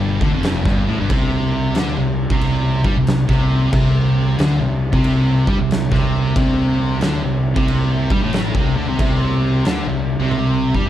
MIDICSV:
0, 0, Header, 1, 4, 480
1, 0, Start_track
1, 0, Tempo, 658617
1, 799, Time_signature, 4, 2, 24, 8
1, 7940, End_track
2, 0, Start_track
2, 0, Title_t, "Distorted electric guitar"
2, 0, Program_c, 0, 30
2, 0, Note_on_c, 0, 43, 104
2, 144, Note_off_c, 0, 43, 0
2, 153, Note_on_c, 0, 50, 98
2, 231, Note_off_c, 0, 50, 0
2, 242, Note_on_c, 0, 41, 100
2, 469, Note_off_c, 0, 41, 0
2, 479, Note_on_c, 0, 43, 104
2, 624, Note_off_c, 0, 43, 0
2, 640, Note_on_c, 0, 45, 106
2, 714, Note_off_c, 0, 45, 0
2, 718, Note_on_c, 0, 43, 103
2, 795, Note_off_c, 0, 43, 0
2, 799, Note_on_c, 0, 48, 107
2, 1273, Note_off_c, 0, 48, 0
2, 1276, Note_on_c, 0, 50, 104
2, 1424, Note_off_c, 0, 50, 0
2, 1434, Note_on_c, 0, 48, 74
2, 1640, Note_off_c, 0, 48, 0
2, 1680, Note_on_c, 0, 48, 106
2, 2060, Note_on_c, 0, 55, 95
2, 2063, Note_off_c, 0, 48, 0
2, 2143, Note_off_c, 0, 55, 0
2, 2150, Note_on_c, 0, 48, 78
2, 2328, Note_off_c, 0, 48, 0
2, 2386, Note_on_c, 0, 48, 102
2, 2700, Note_off_c, 0, 48, 0
2, 2709, Note_on_c, 0, 48, 116
2, 3179, Note_off_c, 0, 48, 0
2, 3182, Note_on_c, 0, 50, 106
2, 3336, Note_off_c, 0, 50, 0
2, 3348, Note_on_c, 0, 48, 79
2, 3557, Note_off_c, 0, 48, 0
2, 3590, Note_on_c, 0, 48, 101
2, 3978, Note_off_c, 0, 48, 0
2, 3992, Note_on_c, 0, 55, 101
2, 4068, Note_off_c, 0, 55, 0
2, 4070, Note_on_c, 0, 48, 76
2, 4248, Note_off_c, 0, 48, 0
2, 4311, Note_on_c, 0, 48, 108
2, 4624, Note_off_c, 0, 48, 0
2, 4633, Note_on_c, 0, 48, 109
2, 5105, Note_off_c, 0, 48, 0
2, 5108, Note_on_c, 0, 50, 109
2, 5258, Note_off_c, 0, 50, 0
2, 5264, Note_on_c, 0, 48, 79
2, 5474, Note_off_c, 0, 48, 0
2, 5494, Note_on_c, 0, 48, 109
2, 5890, Note_off_c, 0, 48, 0
2, 5903, Note_on_c, 0, 55, 99
2, 5983, Note_off_c, 0, 55, 0
2, 5985, Note_on_c, 0, 45, 96
2, 6219, Note_off_c, 0, 45, 0
2, 6233, Note_on_c, 0, 48, 100
2, 6379, Note_off_c, 0, 48, 0
2, 6382, Note_on_c, 0, 50, 106
2, 6463, Note_off_c, 0, 50, 0
2, 6481, Note_on_c, 0, 48, 105
2, 6552, Note_off_c, 0, 48, 0
2, 6561, Note_on_c, 0, 48, 109
2, 7033, Note_off_c, 0, 48, 0
2, 7040, Note_on_c, 0, 50, 101
2, 7185, Note_off_c, 0, 50, 0
2, 7194, Note_on_c, 0, 48, 80
2, 7400, Note_off_c, 0, 48, 0
2, 7440, Note_on_c, 0, 48, 99
2, 7824, Note_off_c, 0, 48, 0
2, 7833, Note_on_c, 0, 55, 100
2, 7910, Note_off_c, 0, 55, 0
2, 7917, Note_on_c, 0, 45, 98
2, 7940, Note_off_c, 0, 45, 0
2, 7940, End_track
3, 0, Start_track
3, 0, Title_t, "Fingered electric bass"
3, 0, Program_c, 1, 33
3, 0, Note_on_c, 1, 31, 93
3, 125, Note_off_c, 1, 31, 0
3, 152, Note_on_c, 1, 38, 91
3, 230, Note_off_c, 1, 38, 0
3, 236, Note_on_c, 1, 29, 94
3, 459, Note_off_c, 1, 29, 0
3, 476, Note_on_c, 1, 31, 93
3, 621, Note_off_c, 1, 31, 0
3, 625, Note_on_c, 1, 33, 94
3, 706, Note_off_c, 1, 33, 0
3, 713, Note_on_c, 1, 31, 96
3, 792, Note_off_c, 1, 31, 0
3, 801, Note_on_c, 1, 36, 104
3, 1250, Note_off_c, 1, 36, 0
3, 1268, Note_on_c, 1, 38, 93
3, 1418, Note_off_c, 1, 38, 0
3, 1437, Note_on_c, 1, 36, 87
3, 1659, Note_off_c, 1, 36, 0
3, 1678, Note_on_c, 1, 36, 100
3, 2044, Note_off_c, 1, 36, 0
3, 2075, Note_on_c, 1, 43, 97
3, 2150, Note_off_c, 1, 43, 0
3, 2153, Note_on_c, 1, 36, 86
3, 2376, Note_off_c, 1, 36, 0
3, 2396, Note_on_c, 1, 36, 91
3, 2695, Note_off_c, 1, 36, 0
3, 2719, Note_on_c, 1, 36, 98
3, 3168, Note_off_c, 1, 36, 0
3, 3201, Note_on_c, 1, 38, 100
3, 3344, Note_off_c, 1, 38, 0
3, 3349, Note_on_c, 1, 36, 89
3, 3574, Note_off_c, 1, 36, 0
3, 3596, Note_on_c, 1, 36, 95
3, 3962, Note_off_c, 1, 36, 0
3, 3993, Note_on_c, 1, 43, 90
3, 4068, Note_off_c, 1, 43, 0
3, 4074, Note_on_c, 1, 36, 82
3, 4296, Note_off_c, 1, 36, 0
3, 4316, Note_on_c, 1, 36, 98
3, 4614, Note_off_c, 1, 36, 0
3, 4635, Note_on_c, 1, 36, 104
3, 5085, Note_off_c, 1, 36, 0
3, 5103, Note_on_c, 1, 38, 97
3, 5254, Note_off_c, 1, 38, 0
3, 5266, Note_on_c, 1, 36, 85
3, 5492, Note_off_c, 1, 36, 0
3, 5511, Note_on_c, 1, 36, 98
3, 5880, Note_off_c, 1, 36, 0
3, 5904, Note_on_c, 1, 43, 95
3, 5983, Note_off_c, 1, 43, 0
3, 5992, Note_on_c, 1, 33, 98
3, 6215, Note_off_c, 1, 33, 0
3, 6230, Note_on_c, 1, 36, 93
3, 6376, Note_off_c, 1, 36, 0
3, 6388, Note_on_c, 1, 38, 97
3, 6465, Note_off_c, 1, 38, 0
3, 6473, Note_on_c, 1, 36, 105
3, 6549, Note_off_c, 1, 36, 0
3, 6555, Note_on_c, 1, 36, 99
3, 7006, Note_off_c, 1, 36, 0
3, 7032, Note_on_c, 1, 38, 95
3, 7179, Note_off_c, 1, 38, 0
3, 7185, Note_on_c, 1, 36, 90
3, 7411, Note_off_c, 1, 36, 0
3, 7427, Note_on_c, 1, 36, 95
3, 7799, Note_off_c, 1, 36, 0
3, 7832, Note_on_c, 1, 43, 99
3, 7903, Note_off_c, 1, 43, 0
3, 7907, Note_on_c, 1, 33, 87
3, 7940, Note_off_c, 1, 33, 0
3, 7940, End_track
4, 0, Start_track
4, 0, Title_t, "Drums"
4, 154, Note_on_c, 9, 36, 107
4, 227, Note_off_c, 9, 36, 0
4, 314, Note_on_c, 9, 49, 64
4, 326, Note_on_c, 9, 38, 107
4, 387, Note_off_c, 9, 49, 0
4, 399, Note_off_c, 9, 38, 0
4, 477, Note_on_c, 9, 36, 111
4, 489, Note_on_c, 9, 38, 36
4, 550, Note_off_c, 9, 36, 0
4, 562, Note_off_c, 9, 38, 0
4, 800, Note_on_c, 9, 49, 66
4, 802, Note_on_c, 9, 36, 118
4, 873, Note_off_c, 9, 49, 0
4, 875, Note_off_c, 9, 36, 0
4, 1274, Note_on_c, 9, 49, 64
4, 1286, Note_on_c, 9, 38, 118
4, 1347, Note_off_c, 9, 49, 0
4, 1359, Note_off_c, 9, 38, 0
4, 1678, Note_on_c, 9, 36, 112
4, 1751, Note_off_c, 9, 36, 0
4, 1759, Note_on_c, 9, 49, 61
4, 1832, Note_off_c, 9, 49, 0
4, 2073, Note_on_c, 9, 36, 97
4, 2146, Note_off_c, 9, 36, 0
4, 2237, Note_on_c, 9, 49, 62
4, 2249, Note_on_c, 9, 38, 112
4, 2310, Note_off_c, 9, 49, 0
4, 2322, Note_off_c, 9, 38, 0
4, 2397, Note_on_c, 9, 36, 109
4, 2413, Note_on_c, 9, 38, 35
4, 2470, Note_off_c, 9, 36, 0
4, 2486, Note_off_c, 9, 38, 0
4, 2716, Note_on_c, 9, 49, 77
4, 2718, Note_on_c, 9, 36, 116
4, 2789, Note_off_c, 9, 49, 0
4, 2791, Note_off_c, 9, 36, 0
4, 3197, Note_on_c, 9, 49, 65
4, 3209, Note_on_c, 9, 38, 125
4, 3270, Note_off_c, 9, 49, 0
4, 3281, Note_off_c, 9, 38, 0
4, 3592, Note_on_c, 9, 36, 103
4, 3665, Note_off_c, 9, 36, 0
4, 3673, Note_on_c, 9, 49, 67
4, 3746, Note_off_c, 9, 49, 0
4, 3989, Note_on_c, 9, 36, 103
4, 4062, Note_off_c, 9, 36, 0
4, 4159, Note_on_c, 9, 49, 63
4, 4171, Note_on_c, 9, 38, 110
4, 4232, Note_off_c, 9, 49, 0
4, 4244, Note_off_c, 9, 38, 0
4, 4312, Note_on_c, 9, 36, 109
4, 4329, Note_on_c, 9, 38, 34
4, 4385, Note_off_c, 9, 36, 0
4, 4402, Note_off_c, 9, 38, 0
4, 4635, Note_on_c, 9, 36, 114
4, 4636, Note_on_c, 9, 49, 65
4, 4708, Note_off_c, 9, 36, 0
4, 4709, Note_off_c, 9, 49, 0
4, 5108, Note_on_c, 9, 49, 60
4, 5120, Note_on_c, 9, 38, 117
4, 5181, Note_off_c, 9, 49, 0
4, 5193, Note_off_c, 9, 38, 0
4, 5511, Note_on_c, 9, 36, 111
4, 5583, Note_off_c, 9, 36, 0
4, 5598, Note_on_c, 9, 49, 60
4, 5671, Note_off_c, 9, 49, 0
4, 5906, Note_on_c, 9, 36, 108
4, 5979, Note_off_c, 9, 36, 0
4, 6069, Note_on_c, 9, 49, 60
4, 6080, Note_on_c, 9, 38, 113
4, 6142, Note_off_c, 9, 49, 0
4, 6153, Note_off_c, 9, 38, 0
4, 6229, Note_on_c, 9, 36, 110
4, 6302, Note_off_c, 9, 36, 0
4, 6554, Note_on_c, 9, 36, 118
4, 6557, Note_on_c, 9, 49, 70
4, 6627, Note_off_c, 9, 36, 0
4, 6630, Note_off_c, 9, 49, 0
4, 7033, Note_on_c, 9, 49, 64
4, 7045, Note_on_c, 9, 38, 116
4, 7106, Note_off_c, 9, 49, 0
4, 7118, Note_off_c, 9, 38, 0
4, 7517, Note_on_c, 9, 48, 65
4, 7590, Note_off_c, 9, 48, 0
4, 7831, Note_on_c, 9, 36, 72
4, 7904, Note_off_c, 9, 36, 0
4, 7940, End_track
0, 0, End_of_file